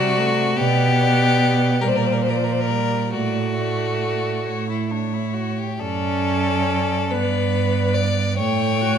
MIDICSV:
0, 0, Header, 1, 5, 480
1, 0, Start_track
1, 0, Key_signature, 2, "major"
1, 0, Tempo, 832178
1, 334, Time_signature, 6, 3, 24, 8
1, 1301, Tempo, 884956
1, 3701, Tempo, 851064
1, 4999, End_track
2, 0, Start_track
2, 0, Title_t, "Violin"
2, 0, Program_c, 0, 40
2, 0, Note_on_c, 0, 74, 59
2, 322, Note_off_c, 0, 74, 0
2, 325, Note_on_c, 0, 74, 59
2, 562, Note_off_c, 0, 74, 0
2, 568, Note_on_c, 0, 74, 56
2, 1041, Note_off_c, 0, 74, 0
2, 1051, Note_on_c, 0, 74, 51
2, 1294, Note_off_c, 0, 74, 0
2, 1299, Note_on_c, 0, 74, 44
2, 1763, Note_off_c, 0, 74, 0
2, 1775, Note_on_c, 0, 74, 36
2, 2010, Note_off_c, 0, 74, 0
2, 2013, Note_on_c, 0, 74, 35
2, 2491, Note_off_c, 0, 74, 0
2, 2497, Note_on_c, 0, 73, 36
2, 2737, Note_off_c, 0, 73, 0
2, 2741, Note_on_c, 0, 73, 39
2, 3217, Note_off_c, 0, 73, 0
2, 3234, Note_on_c, 0, 74, 49
2, 3929, Note_off_c, 0, 74, 0
2, 3949, Note_on_c, 0, 74, 51
2, 4654, Note_off_c, 0, 74, 0
2, 4663, Note_on_c, 0, 79, 53
2, 4999, Note_off_c, 0, 79, 0
2, 4999, End_track
3, 0, Start_track
3, 0, Title_t, "Violin"
3, 0, Program_c, 1, 40
3, 0, Note_on_c, 1, 66, 96
3, 329, Note_on_c, 1, 67, 100
3, 338, Note_off_c, 1, 66, 0
3, 1045, Note_on_c, 1, 70, 68
3, 1054, Note_off_c, 1, 67, 0
3, 1083, Note_on_c, 1, 72, 71
3, 1092, Note_off_c, 1, 70, 0
3, 1130, Note_on_c, 1, 70, 67
3, 1139, Note_off_c, 1, 72, 0
3, 1186, Note_on_c, 1, 72, 65
3, 1194, Note_off_c, 1, 70, 0
3, 1226, Note_on_c, 1, 70, 59
3, 1234, Note_off_c, 1, 72, 0
3, 1281, Note_on_c, 1, 72, 69
3, 1290, Note_off_c, 1, 70, 0
3, 1320, Note_on_c, 1, 70, 61
3, 1328, Note_off_c, 1, 72, 0
3, 1358, Note_on_c, 1, 72, 55
3, 1366, Note_off_c, 1, 70, 0
3, 1403, Note_on_c, 1, 70, 57
3, 1411, Note_off_c, 1, 72, 0
3, 1444, Note_on_c, 1, 72, 63
3, 1452, Note_off_c, 1, 70, 0
3, 1488, Note_on_c, 1, 70, 75
3, 1496, Note_off_c, 1, 72, 0
3, 1760, Note_on_c, 1, 66, 70
3, 1768, Note_off_c, 1, 70, 0
3, 2616, Note_off_c, 1, 66, 0
3, 2626, Note_on_c, 1, 64, 48
3, 2744, Note_on_c, 1, 62, 47
3, 2752, Note_off_c, 1, 64, 0
3, 2863, Note_on_c, 1, 64, 50
3, 2871, Note_off_c, 1, 62, 0
3, 2972, Note_on_c, 1, 66, 54
3, 2980, Note_off_c, 1, 64, 0
3, 3106, Note_on_c, 1, 67, 53
3, 3114, Note_off_c, 1, 66, 0
3, 3223, Note_on_c, 1, 69, 77
3, 3231, Note_off_c, 1, 67, 0
3, 3940, Note_on_c, 1, 71, 75
3, 3948, Note_off_c, 1, 69, 0
3, 4413, Note_on_c, 1, 74, 69
3, 4421, Note_off_c, 1, 71, 0
3, 4655, Note_off_c, 1, 74, 0
3, 4658, Note_on_c, 1, 73, 85
3, 4999, Note_off_c, 1, 73, 0
3, 4999, End_track
4, 0, Start_track
4, 0, Title_t, "Viola"
4, 0, Program_c, 2, 41
4, 0, Note_on_c, 2, 55, 58
4, 101, Note_on_c, 2, 57, 60
4, 110, Note_off_c, 2, 55, 0
4, 332, Note_off_c, 2, 57, 0
4, 335, Note_on_c, 2, 59, 78
4, 1039, Note_off_c, 2, 59, 0
4, 1058, Note_on_c, 2, 55, 61
4, 1308, Note_on_c, 2, 53, 48
4, 1316, Note_off_c, 2, 55, 0
4, 1544, Note_on_c, 2, 55, 49
4, 1552, Note_off_c, 2, 53, 0
4, 1786, Note_on_c, 2, 57, 53
4, 1794, Note_off_c, 2, 55, 0
4, 2871, Note_off_c, 2, 57, 0
4, 3231, Note_on_c, 2, 61, 65
4, 3948, Note_on_c, 2, 59, 47
4, 3957, Note_off_c, 2, 61, 0
4, 4660, Note_off_c, 2, 59, 0
4, 4664, Note_on_c, 2, 57, 54
4, 4905, Note_on_c, 2, 66, 64
4, 4913, Note_off_c, 2, 57, 0
4, 4999, Note_off_c, 2, 66, 0
4, 4999, End_track
5, 0, Start_track
5, 0, Title_t, "Cello"
5, 0, Program_c, 3, 42
5, 0, Note_on_c, 3, 48, 65
5, 252, Note_off_c, 3, 48, 0
5, 331, Note_on_c, 3, 47, 74
5, 965, Note_off_c, 3, 47, 0
5, 1054, Note_on_c, 3, 46, 64
5, 1690, Note_off_c, 3, 46, 0
5, 1776, Note_on_c, 3, 45, 51
5, 2417, Note_off_c, 3, 45, 0
5, 2506, Note_on_c, 3, 45, 41
5, 3146, Note_off_c, 3, 45, 0
5, 3231, Note_on_c, 3, 42, 54
5, 3949, Note_on_c, 3, 43, 51
5, 3958, Note_off_c, 3, 42, 0
5, 4671, Note_on_c, 3, 45, 51
5, 4680, Note_off_c, 3, 43, 0
5, 4999, Note_off_c, 3, 45, 0
5, 4999, End_track
0, 0, End_of_file